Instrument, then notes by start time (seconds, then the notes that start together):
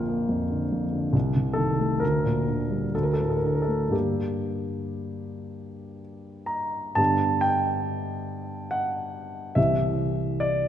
grand piano
Already playing: A#1 F2 D3 A#3 F4 F5 G5
0.09 A#3
0.29 F2
0.50 D3
0.72 F2
0.93 D3
1.13 C2
1.36 C3
1.53 D#3 A4
1.79 A3
2.00 D2 A#4
2.24 A#2
2.47 D3
2.70 G3
2.95 D2 A4
3.03 A#4
3.13 A4
3.19 A2 A#4
3.30 A4
3.37 A#4
3.43 D3 A4
3.55 A#4
3.62 A4
3.67 A3
3.89 G2 D3 A#3 G4
6.46 A#5
6.95 G2 D3 B3 G4 A5
7.41 G5
8.71 F#5
9.55 C2 E3 C4 G4 E5
10.40 D5